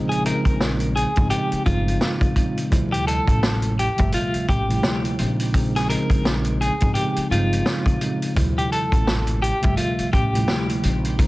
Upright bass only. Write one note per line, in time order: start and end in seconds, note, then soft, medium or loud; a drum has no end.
0.00 0.29 A#1 loud
0.45 1.03 A#1 medium
1.17 1.29 G#1 medium
1.52 muted upright bass stroke medium
1.66 1.95 G1 medium
2.72 3.18 D2 loud
3.28 3.86 A1 loud
4.00 4.11 G1 medium
4.34 muted upright bass stroke soft
4.49 4.78 A1 medium
5.19 5.94 A#1 loud
6.10 6.68 A#1 medium
6.82 6.94 G#1 medium
7.17 muted upright bass stroke medium
7.31 7.60 G1 medium
8.37 8.83 D2 loud
8.92 9.50 A1 loud
9.64 9.76 G1 medium
9.99 muted upright bass stroke soft
10.13 10.42 A1 loud
10.84 11.27 A#1 loud